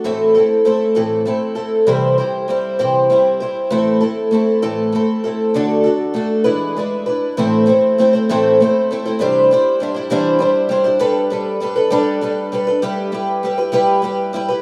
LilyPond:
\new Staff \with { instrumentName = "Twelve-string acoustic guitar" } { \time 6/8 \key a \dorian \tempo 4. = 66 <a, e a c' e' a'>8 <a c' e' a'>8 <a c' e' a'>8 <a, e a c' e' a'>8 <a c' e' a'>8 <a c' e' a'>8 | <c e g c' e' c''>8 <g c' e' c''>8 <g c' e' c''>8 <c e g c' e' c''>8 <g c' e' c''>8 <g c' e' c''>8 | <a, e a c' e' a'>8 <a c' e' a'>8 <a c' e' a'>8 <a, e a c' e' a'>8 <a c' e' a'>8 <a c' e' a'>8 | <d a d' fis' a'>8 <d' fis' a'>8 <a d' fis' a'>8 <e gis d' e' b'>8 <gis d' e' b'>8 <d' e' b'>8 |
\key a \minor <a, e a c' e' c''>8 <a c' e' c''>8 <a c' e' c''>16 <a c' e' c''>16 <a, e a c' e' c''>8 <a c' e' c''>8 <a c' e' c''>16 <a c' e' c''>16 | <c e g d' e' c''>8 <g d' e' c''>8 <g d' e' c''>16 <g d' e' c''>16 <c e g d' e' c''>8 <g d' e' c''>8 <g d' e' c''>16 <g d' e' c''>16 | <g d' a' b'>8 <g d' a' b'>8 <g d' a' b'>16 <d' a' b'>16 <g d' a' b'>8 <g d' a' b'>8 <g d' a' b'>16 <d' a' b'>16 | <g e' g' b'>8 <g e' g' b'>8 <g e' g' b'>16 <e' g' b'>16 <g e' g' b'>8 <g e' g' b'>8 <g e' g' b'>16 <e' g' b'>16 | }